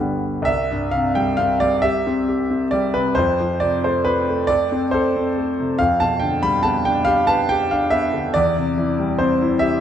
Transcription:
0.00 0.50 D3 medium
0.00 0.50 G3 medium
0.00 0.50 B3 medium
0.42 3.10 C2 medium
0.42 0.92 E5 loud
0.71 1.07 G2 medium
0.91 1.29 C3 medium
0.91 1.15 F5 loud
1.15 1.52 G3 medium
1.15 1.38 G5 medium
1.37 1.75 C4 medium
1.37 1.60 F5 loud
1.60 1.97 G3 medium
1.60 1.83 D5 loud
1.82 2.20 G4 medium
1.82 2.72 E5 loud
2.07 2.42 C4 medium
2.28 2.64 G4 medium
2.51 2.86 C4 medium
2.71 3.08 G3 medium
2.71 2.94 D5 medium
2.94 3.17 C3 medium
2.94 3.16 B4 medium
3.15 5.75 F2 medium
3.15 3.61 C5 loud
3.40 3.75 F3 medium
3.60 3.97 C3 medium
3.60 3.83 D5 medium
3.84 4.19 A3 medium
3.84 4.06 C5 medium
4.05 4.41 C4 medium
4.05 4.49 B4 medium
4.29 4.63 A3 medium
4.47 4.84 A4 medium
4.47 4.91 D5 loud
4.72 5.06 C4 medium
4.91 5.28 A4 medium
4.91 5.78 C5 medium
5.16 5.49 C4 medium
5.38 5.71 A3 medium
5.60 5.80 C3 medium
5.79 8.31 F2 medium
5.79 6.00 F5 loud
6.00 6.35 B2 medium
6.00 6.21 A5 loud
6.20 6.56 D3 medium
6.20 6.42 G5 medium
6.43 6.78 G3 medium
6.43 6.64 B5 loud
6.63 6.99 B3 medium
6.63 6.85 A5 loud
6.85 7.20 D4 medium
6.85 7.07 G5 loud
7.05 7.41 G4 medium
7.05 7.27 F5 loud
7.27 7.62 B4 medium
7.27 7.49 A5 loud
7.49 7.84 G4 medium
7.49 7.70 G5 loud
7.71 8.05 D4 medium
7.71 7.92 F5 medium
7.90 8.26 B3 medium
7.90 8.34 E5 loud
8.13 8.34 D3 medium
8.34 9.80 E2 medium
8.34 9.20 D5 loud
8.56 8.90 C3 medium
8.78 9.12 E3 medium
8.99 9.33 G3 medium
9.19 9.54 C4 medium
9.19 9.61 C5 medium
9.42 9.75 E4 medium
9.59 9.80 G4 medium
9.59 9.80 E5 loud

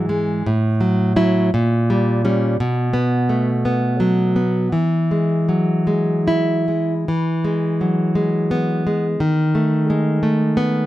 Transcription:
0.00 0.42 G#2 medium
0.00 0.46 E3 medium
0.09 0.46 G#3 medium
0.46 1.51 A2 medium
0.81 1.15 F#3 medium
1.16 1.50 F#3 medium
1.16 1.50 E4 medium
1.54 2.57 A#2 medium
1.90 2.24 G3 medium
2.25 2.56 G3 medium
2.25 2.56 C#4 medium
2.60 4.70 B2 medium
2.94 3.50 B3 medium
3.29 4.37 A3 medium
3.65 4.35 B3 medium
4.00 4.72 F#3 medium
4.36 4.74 B3 medium
4.72 7.04 E3 medium
5.11 5.86 G#3 soft
5.49 6.69 F#3 soft
5.87 6.67 G#3 medium
6.28 6.93 E4 medium
6.68 7.08 G#3 soft
7.08 9.15 E3 medium
7.45 8.14 G#3 medium
7.81 8.86 F#3 medium
8.15 8.85 G#3 medium
8.51 9.06 B3 medium
8.87 9.20 G#3 medium
9.20 10.86 D#3 medium
9.55 10.22 A3 medium
9.90 10.86 G#3 medium
10.23 10.86 A3 medium
10.57 10.86 B3 medium

